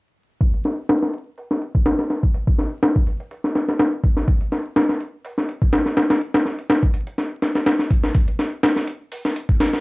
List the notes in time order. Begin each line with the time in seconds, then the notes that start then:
0.41 kick, closed hi-hat
0.54 closed hi-hat
0.65 snare, closed hi-hat
0.89 snare, closed hi-hat
1.02 snare
1.13 closed hi-hat
1.38 open hi-hat
1.51 snare
1.62 closed hi-hat
1.75 kick
1.86 snare, closed hi-hat
1.99 snare
2.10 snare, closed hi-hat
2.23 kick
2.34 closed hi-hat
2.47 kick
2.58 snare, closed hi-hat
2.83 snare, closed hi-hat
2.96 kick
3.07 closed hi-hat
3.20 closed hi-hat
3.31 closed hi-hat
3.44 snare
3.55 snare, closed hi-hat
3.68 snare
3.79 snare, closed hi-hat
4.04 kick, closed hi-hat
4.17 snare
4.28 kick, closed hi-hat
4.41 closed hi-hat
4.52 snare, closed hi-hat
4.76 snare, closed hi-hat
4.89 snare
5.00 closed hi-hat
5.25 open hi-hat
5.38 snare
5.49 closed hi-hat
5.62 kick
5.73 snare, closed hi-hat
5.86 snare
5.97 snare, closed hi-hat
6.10 snare, closed hi-hat
6.21 closed hi-hat
6.34 snare, closed hi-hat
6.45 snare
6.59 closed hi-hat
6.70 snare, closed hi-hat
6.83 kick
6.94 closed hi-hat
7.07 closed hi-hat
7.18 snare, closed hi-hat
7.42 snare, closed hi-hat
7.55 snare
7.66 snare, closed hi-hat
7.79 snare
7.91 kick, closed hi-hat
8.04 snare
8.15 kick, closed hi-hat
8.28 closed hi-hat
8.39 snare, closed hi-hat
8.63 snare, closed hi-hat
8.76 snare
8.87 closed hi-hat
9.12 open hi-hat
9.25 snare
9.36 closed hi-hat
9.49 kick
9.60 snare, closed hi-hat
9.73 snare